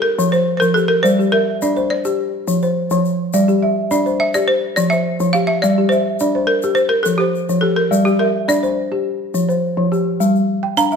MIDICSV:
0, 0, Header, 1, 4, 480
1, 0, Start_track
1, 0, Tempo, 572519
1, 876, Time_signature, 4, 2, 24, 8
1, 9191, End_track
2, 0, Start_track
2, 0, Title_t, "Balafon"
2, 0, Program_c, 0, 12
2, 16, Note_on_c, 0, 70, 86
2, 269, Note_on_c, 0, 72, 88
2, 274, Note_off_c, 0, 70, 0
2, 470, Note_off_c, 0, 72, 0
2, 480, Note_on_c, 0, 72, 61
2, 502, Note_on_c, 0, 70, 99
2, 514, Note_off_c, 0, 72, 0
2, 622, Note_on_c, 0, 69, 98
2, 632, Note_off_c, 0, 70, 0
2, 739, Note_on_c, 0, 70, 101
2, 755, Note_off_c, 0, 69, 0
2, 862, Note_on_c, 0, 72, 104
2, 871, Note_off_c, 0, 70, 0
2, 1093, Note_off_c, 0, 72, 0
2, 1108, Note_on_c, 0, 70, 91
2, 1595, Note_on_c, 0, 74, 97
2, 1608, Note_off_c, 0, 70, 0
2, 1820, Note_off_c, 0, 74, 0
2, 3520, Note_on_c, 0, 76, 97
2, 3575, Note_off_c, 0, 76, 0
2, 3642, Note_on_c, 0, 74, 95
2, 3753, Note_on_c, 0, 72, 98
2, 3763, Note_off_c, 0, 74, 0
2, 3979, Note_off_c, 0, 72, 0
2, 3993, Note_on_c, 0, 74, 94
2, 4049, Note_off_c, 0, 74, 0
2, 4108, Note_on_c, 0, 76, 92
2, 4469, Note_on_c, 0, 77, 103
2, 4484, Note_off_c, 0, 76, 0
2, 4587, Note_on_c, 0, 76, 100
2, 4600, Note_off_c, 0, 77, 0
2, 4713, Note_on_c, 0, 74, 108
2, 4716, Note_off_c, 0, 76, 0
2, 4938, Note_on_c, 0, 72, 86
2, 4963, Note_off_c, 0, 74, 0
2, 5425, Note_on_c, 0, 70, 86
2, 5443, Note_off_c, 0, 72, 0
2, 5654, Note_off_c, 0, 70, 0
2, 5659, Note_on_c, 0, 72, 97
2, 5777, Note_on_c, 0, 70, 91
2, 5794, Note_off_c, 0, 72, 0
2, 5893, Note_on_c, 0, 69, 86
2, 5897, Note_off_c, 0, 70, 0
2, 6018, Note_on_c, 0, 67, 84
2, 6032, Note_off_c, 0, 69, 0
2, 6380, Note_on_c, 0, 69, 84
2, 6398, Note_off_c, 0, 67, 0
2, 6509, Note_on_c, 0, 70, 81
2, 6515, Note_off_c, 0, 69, 0
2, 6750, Note_on_c, 0, 67, 77
2, 6761, Note_off_c, 0, 70, 0
2, 6870, Note_on_c, 0, 70, 76
2, 6876, Note_off_c, 0, 67, 0
2, 7116, Note_on_c, 0, 74, 83
2, 7120, Note_off_c, 0, 70, 0
2, 7339, Note_off_c, 0, 74, 0
2, 9032, Note_on_c, 0, 82, 96
2, 9191, Note_off_c, 0, 82, 0
2, 9191, End_track
3, 0, Start_track
3, 0, Title_t, "Balafon"
3, 0, Program_c, 1, 12
3, 156, Note_on_c, 1, 53, 86
3, 274, Note_on_c, 1, 72, 74
3, 396, Note_off_c, 1, 53, 0
3, 518, Note_on_c, 1, 53, 78
3, 635, Note_off_c, 1, 72, 0
3, 635, Note_on_c, 1, 67, 64
3, 759, Note_off_c, 1, 53, 0
3, 871, Note_on_c, 1, 74, 74
3, 872, Note_on_c, 1, 55, 77
3, 989, Note_off_c, 1, 67, 0
3, 999, Note_on_c, 1, 67, 64
3, 1115, Note_off_c, 1, 55, 0
3, 1116, Note_on_c, 1, 76, 61
3, 1237, Note_off_c, 1, 74, 0
3, 1358, Note_off_c, 1, 67, 0
3, 1358, Note_on_c, 1, 74, 74
3, 1361, Note_on_c, 1, 62, 87
3, 1479, Note_off_c, 1, 76, 0
3, 1480, Note_on_c, 1, 72, 72
3, 1600, Note_off_c, 1, 62, 0
3, 1719, Note_on_c, 1, 67, 74
3, 1720, Note_off_c, 1, 74, 0
3, 1838, Note_off_c, 1, 67, 0
3, 1839, Note_off_c, 1, 72, 0
3, 2076, Note_on_c, 1, 53, 81
3, 2203, Note_on_c, 1, 72, 67
3, 2318, Note_off_c, 1, 53, 0
3, 2440, Note_on_c, 1, 53, 88
3, 2560, Note_off_c, 1, 72, 0
3, 2681, Note_off_c, 1, 53, 0
3, 2797, Note_on_c, 1, 55, 84
3, 2799, Note_on_c, 1, 74, 75
3, 2920, Note_on_c, 1, 67, 71
3, 3039, Note_off_c, 1, 55, 0
3, 3039, Note_on_c, 1, 76, 65
3, 3161, Note_off_c, 1, 74, 0
3, 3278, Note_on_c, 1, 62, 79
3, 3278, Note_on_c, 1, 74, 74
3, 3279, Note_off_c, 1, 67, 0
3, 3401, Note_off_c, 1, 76, 0
3, 3404, Note_on_c, 1, 72, 65
3, 3519, Note_off_c, 1, 62, 0
3, 3641, Note_off_c, 1, 74, 0
3, 3647, Note_on_c, 1, 67, 76
3, 3761, Note_off_c, 1, 72, 0
3, 3762, Note_off_c, 1, 67, 0
3, 4002, Note_on_c, 1, 53, 82
3, 4128, Note_on_c, 1, 72, 62
3, 4241, Note_off_c, 1, 53, 0
3, 4361, Note_on_c, 1, 53, 81
3, 4483, Note_off_c, 1, 72, 0
3, 4483, Note_on_c, 1, 67, 65
3, 4601, Note_off_c, 1, 53, 0
3, 4723, Note_on_c, 1, 74, 67
3, 4724, Note_on_c, 1, 55, 76
3, 4836, Note_off_c, 1, 67, 0
3, 4846, Note_on_c, 1, 67, 72
3, 4962, Note_off_c, 1, 55, 0
3, 4963, Note_on_c, 1, 76, 67
3, 5083, Note_off_c, 1, 74, 0
3, 5201, Note_off_c, 1, 67, 0
3, 5204, Note_on_c, 1, 62, 81
3, 5204, Note_on_c, 1, 74, 68
3, 5323, Note_off_c, 1, 76, 0
3, 5325, Note_on_c, 1, 72, 73
3, 5441, Note_off_c, 1, 62, 0
3, 5563, Note_off_c, 1, 74, 0
3, 5565, Note_on_c, 1, 67, 74
3, 5680, Note_off_c, 1, 72, 0
3, 5681, Note_off_c, 1, 67, 0
3, 5918, Note_on_c, 1, 53, 73
3, 6038, Note_on_c, 1, 72, 69
3, 6158, Note_off_c, 1, 53, 0
3, 6280, Note_on_c, 1, 53, 79
3, 6393, Note_on_c, 1, 67, 71
3, 6397, Note_off_c, 1, 72, 0
3, 6520, Note_off_c, 1, 53, 0
3, 6631, Note_on_c, 1, 55, 82
3, 6633, Note_on_c, 1, 74, 70
3, 6746, Note_off_c, 1, 67, 0
3, 6756, Note_on_c, 1, 67, 68
3, 6874, Note_off_c, 1, 55, 0
3, 6876, Note_on_c, 1, 76, 59
3, 6996, Note_off_c, 1, 74, 0
3, 7112, Note_on_c, 1, 62, 85
3, 7112, Note_on_c, 1, 74, 67
3, 7115, Note_off_c, 1, 67, 0
3, 7235, Note_on_c, 1, 72, 74
3, 7238, Note_off_c, 1, 76, 0
3, 7354, Note_off_c, 1, 62, 0
3, 7475, Note_off_c, 1, 74, 0
3, 7476, Note_on_c, 1, 67, 72
3, 7594, Note_off_c, 1, 72, 0
3, 7595, Note_off_c, 1, 67, 0
3, 7833, Note_on_c, 1, 53, 79
3, 7953, Note_on_c, 1, 72, 72
3, 8074, Note_off_c, 1, 53, 0
3, 8193, Note_on_c, 1, 53, 78
3, 8313, Note_off_c, 1, 72, 0
3, 8316, Note_on_c, 1, 67, 65
3, 8434, Note_off_c, 1, 53, 0
3, 8554, Note_on_c, 1, 55, 82
3, 8676, Note_off_c, 1, 67, 0
3, 8794, Note_off_c, 1, 55, 0
3, 8912, Note_on_c, 1, 79, 67
3, 9032, Note_on_c, 1, 62, 84
3, 9033, Note_on_c, 1, 77, 75
3, 9136, Note_off_c, 1, 79, 0
3, 9157, Note_on_c, 1, 76, 75
3, 9191, Note_off_c, 1, 62, 0
3, 9191, Note_off_c, 1, 76, 0
3, 9191, Note_off_c, 1, 77, 0
3, 9191, End_track
4, 0, Start_track
4, 0, Title_t, "Drums"
4, 161, Note_on_c, 9, 82, 62
4, 245, Note_off_c, 9, 82, 0
4, 278, Note_on_c, 9, 82, 19
4, 361, Note_off_c, 9, 82, 0
4, 519, Note_on_c, 9, 82, 46
4, 602, Note_off_c, 9, 82, 0
4, 643, Note_on_c, 9, 82, 22
4, 727, Note_off_c, 9, 82, 0
4, 882, Note_on_c, 9, 82, 57
4, 966, Note_off_c, 9, 82, 0
4, 1006, Note_on_c, 9, 82, 19
4, 1090, Note_off_c, 9, 82, 0
4, 1357, Note_on_c, 9, 82, 67
4, 1441, Note_off_c, 9, 82, 0
4, 1478, Note_on_c, 9, 82, 18
4, 1562, Note_off_c, 9, 82, 0
4, 1717, Note_on_c, 9, 82, 52
4, 1801, Note_off_c, 9, 82, 0
4, 2077, Note_on_c, 9, 82, 74
4, 2161, Note_off_c, 9, 82, 0
4, 2200, Note_on_c, 9, 82, 22
4, 2284, Note_off_c, 9, 82, 0
4, 2435, Note_on_c, 9, 82, 55
4, 2519, Note_off_c, 9, 82, 0
4, 2558, Note_on_c, 9, 82, 27
4, 2642, Note_off_c, 9, 82, 0
4, 2794, Note_on_c, 9, 82, 73
4, 2878, Note_off_c, 9, 82, 0
4, 2923, Note_on_c, 9, 82, 21
4, 3007, Note_off_c, 9, 82, 0
4, 3279, Note_on_c, 9, 82, 61
4, 3363, Note_off_c, 9, 82, 0
4, 3407, Note_on_c, 9, 82, 19
4, 3491, Note_off_c, 9, 82, 0
4, 3641, Note_on_c, 9, 82, 57
4, 3725, Note_off_c, 9, 82, 0
4, 3999, Note_on_c, 9, 82, 68
4, 4082, Note_off_c, 9, 82, 0
4, 4123, Note_on_c, 9, 82, 22
4, 4207, Note_off_c, 9, 82, 0
4, 4359, Note_on_c, 9, 82, 50
4, 4443, Note_off_c, 9, 82, 0
4, 4480, Note_on_c, 9, 82, 22
4, 4564, Note_off_c, 9, 82, 0
4, 4725, Note_on_c, 9, 82, 60
4, 4809, Note_off_c, 9, 82, 0
4, 4962, Note_on_c, 9, 82, 22
4, 5046, Note_off_c, 9, 82, 0
4, 5194, Note_on_c, 9, 82, 62
4, 5278, Note_off_c, 9, 82, 0
4, 5552, Note_on_c, 9, 82, 53
4, 5636, Note_off_c, 9, 82, 0
4, 5673, Note_on_c, 9, 82, 20
4, 5757, Note_off_c, 9, 82, 0
4, 5913, Note_on_c, 9, 82, 69
4, 5997, Note_off_c, 9, 82, 0
4, 6162, Note_on_c, 9, 82, 20
4, 6246, Note_off_c, 9, 82, 0
4, 6281, Note_on_c, 9, 82, 54
4, 6365, Note_off_c, 9, 82, 0
4, 6644, Note_on_c, 9, 82, 67
4, 6728, Note_off_c, 9, 82, 0
4, 6764, Note_on_c, 9, 82, 19
4, 6848, Note_off_c, 9, 82, 0
4, 7119, Note_on_c, 9, 82, 66
4, 7203, Note_off_c, 9, 82, 0
4, 7240, Note_on_c, 9, 82, 20
4, 7324, Note_off_c, 9, 82, 0
4, 7836, Note_on_c, 9, 82, 63
4, 7919, Note_off_c, 9, 82, 0
4, 7963, Note_on_c, 9, 82, 21
4, 8047, Note_off_c, 9, 82, 0
4, 8326, Note_on_c, 9, 82, 22
4, 8410, Note_off_c, 9, 82, 0
4, 8559, Note_on_c, 9, 82, 65
4, 8643, Note_off_c, 9, 82, 0
4, 8681, Note_on_c, 9, 82, 18
4, 8765, Note_off_c, 9, 82, 0
4, 9034, Note_on_c, 9, 82, 59
4, 9118, Note_off_c, 9, 82, 0
4, 9150, Note_on_c, 9, 82, 20
4, 9191, Note_off_c, 9, 82, 0
4, 9191, End_track
0, 0, End_of_file